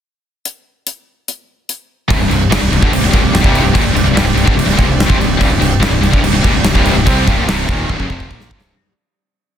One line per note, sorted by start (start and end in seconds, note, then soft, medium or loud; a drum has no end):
0.45 closed hi-hat medium
0.87 closed hi-hat medium
1.28 closed hi-hat medium
1.69 closed hi-hat medium
2.08 2.19 C1 medium
2.08 2.18 C2 medium
2.08 2.19 G2 medium
2.08 8.67 C4 medium
2.08 8.67 G4 medium
2.08 8.68 D5 medium
2.08 kick loud
2.08 crash medium
2.19 2.29 C1 medium
2.19 2.28 C2 medium
2.19 2.29 G2 medium
2.29 2.49 C1 medium
2.29 2.46 C2 medium
2.29 2.47 G2 medium
2.29 crash medium
2.50 2.60 F#1 medium
2.50 2.60 F#2 medium
2.50 2.61 C#3 loud
2.50 snare loud
2.50 crash medium
2.61 2.71 C1 medium
2.61 2.71 C2 medium
2.61 2.71 G2 medium
2.71 2.81 C1 medium
2.71 2.82 C2 medium
2.71 2.81 G2 medium
2.71 crash medium
2.82 2.91 G1 loud
2.82 2.92 G2 medium
2.82 2.92 D3 medium
2.82 kick loud
2.92 3.02 C1 medium
2.92 3.00 C2 medium
2.92 3.00 G2 medium
2.92 crash medium
3.01 3.12 C1 medium
3.01 3.10 C2 medium
3.01 3.11 G2 medium
3.01 snare soft
3.11 3.21 D#1 loud
3.11 3.21 D#2 medium
3.11 3.21 A#2 medium
3.11 kick loud
3.11 crash medium
3.22 3.32 C1 medium
3.22 3.31 C2 medium
3.22 3.31 G2 medium
3.32 3.42 C1 medium
3.32 3.40 C2 medium
3.32 3.41 G2 medium
3.32 snare loud
3.32 crash medium
3.41 3.63 C1 loud
3.41 3.61 C2 loud
3.41 3.62 G2 medium
3.41 3.63 C3 loud
3.41 kick loud
3.55 crash medium
3.63 3.73 C1 medium
3.63 3.73 C2 medium
3.63 3.73 G2 medium
3.73 3.83 D#1 medium
3.73 3.84 D#2 medium
3.73 3.84 A#2 loud
3.73 kick loud
3.73 crash medium
3.84 3.93 C1 medium
3.84 3.92 C2 medium
3.84 3.92 G2 medium
3.93 4.04 C1 medium
3.93 4.03 C2 medium
3.93 4.03 G2 medium
3.93 crash medium
4.04 4.14 C1 medium
4.04 4.12 C2 medium
4.04 4.13 G2 medium
4.13 4.23 C1 medium
4.13 4.23 C2 loud
4.13 4.24 G2 loud
4.13 snare loud
4.13 crash medium
4.24 4.34 C1 medium
4.24 4.33 C2 medium
4.24 4.33 G2 medium
4.34 4.45 C1 medium
4.34 4.43 C2 medium
4.34 4.43 G2 medium
4.34 crash medium
4.44 4.55 G1 loud
4.44 4.53 G2 medium
4.44 4.53 D3 medium
4.44 kick loud
4.53 4.65 C1 medium
4.53 4.62 C2 medium
4.53 4.63 G2 medium
4.59 crash medium
4.64 4.76 C1 medium
4.64 4.73 C2 medium
4.64 4.74 G2 medium
4.69 4.85 D#2 medium
4.69 snare soft
4.75 4.86 D#1 loud
4.75 4.85 A#2 loud
4.79 kick loud
4.79 crash medium
4.85 5.07 C1 medium
4.85 5.03 C2 medium
4.85 5.04 G2 medium
5.00 snare loud
5.00 crash medium
5.06 5.16 F1 loud
5.06 5.17 F2 medium
5.06 5.17 C3 loud
5.06 kick medium
5.16 5.37 C1 medium
5.16 5.35 C2 medium
5.16 5.35 G2 medium
5.21 crash medium
5.37 5.48 C1 loud
5.37 5.48 C2 medium
5.37 5.48 G2 loud
5.37 kick medium
5.42 crash medium
5.49 5.59 C1 medium
5.49 5.58 C2 medium
5.49 5.58 G2 medium
5.59 5.79 C1 medium
5.59 5.77 C2 medium
5.59 5.77 G2 medium
5.59 crash medium
5.80 5.89 F#1 medium
5.80 5.90 F#2 loud
5.80 5.90 C#3 loud
5.80 snare loud
5.80 crash medium
5.90 6.00 C1 medium
5.90 6.00 C2 medium
5.90 6.01 G2 medium
6.01 6.11 C1 medium
6.01 6.10 C2 medium
6.01 6.10 G2 medium
6.01 crash medium
6.11 6.22 G1 medium
6.11 6.19 G2 medium
6.11 6.20 D3 medium
6.11 kick loud
6.20 6.32 C1 medium
6.20 6.31 C2 medium
6.20 6.31 G2 medium
6.20 crash medium
6.25 6.34 C2 medium
6.25 6.34 G2 medium
6.32 6.43 C1 medium
6.32 6.41 C2 medium
6.32 6.42 G2 medium
6.41 6.53 D#1 loud
6.41 6.52 D#2 medium
6.41 6.52 A#2 medium
6.41 kick loud
6.41 crash medium
6.46 6.55 A#2 loud
6.53 6.63 C1 medium
6.53 6.62 C2 medium
6.53 6.62 G2 medium
6.63 6.74 C1 medium
6.63 6.73 C2 medium
6.63 6.73 G2 medium
6.63 snare loud
6.63 crash medium
6.74 6.94 C1 loud
6.74 6.93 C2 medium
6.74 6.94 G2 loud
6.74 6.95 C3 medium
6.74 kick medium
6.85 crash medium
6.94 7.05 C1 medium
6.94 7.05 C2 medium
6.94 7.05 G2 medium
7.06 7.25 C2 medium
7.06 7.26 C3 loud
7.06 7.26 G3 medium
7.06 7.26 C4 loud
7.06 kick loud
7.06 crash medium
7.26 7.36 C1 medium
7.26 7.36 C2 medium
7.26 7.37 G2 loud
7.26 kick loud
7.26 crash medium
7.36 7.46 A#1 medium
7.36 7.45 A#2 medium
7.36 7.46 F3 medium
7.46 7.66 C1 medium
7.46 7.66 C2 medium
7.46 7.66 G2 medium
7.46 7.67 C3 medium
7.46 snare loud
7.46 crash medium
7.66 7.87 D#1 medium
7.66 7.87 D#2 medium
7.66 7.86 A#2 loud
7.66 7.88 D#3 loud
7.66 kick loud
7.66 crash medium
7.87 7.99 C1 loud
7.87 7.97 C2 loud
7.87 7.97 G2 loud
7.87 kick medium
7.97 8.09 F#1 medium
7.97 8.07 F#2 medium
7.97 8.08 C#3 loud
7.97 kick medium
8.07 8.29 F1 medium
8.07 8.27 F2 medium
8.07 8.27 C3 loud
8.07 8.27 F3 loud
8.07 kick medium
8.20 kick medium
8.28 8.49 A#1 medium
8.28 8.48 A#2 medium
8.28 8.49 F3 medium
8.28 8.50 A#3 medium
8.28 kick medium
8.40 snare medium
8.48 8.70 C1 loud
8.48 8.70 C2 medium
8.48 8.70 G2 loud
8.48 8.71 C3 loud
8.48 kick loud
8.61 snare medium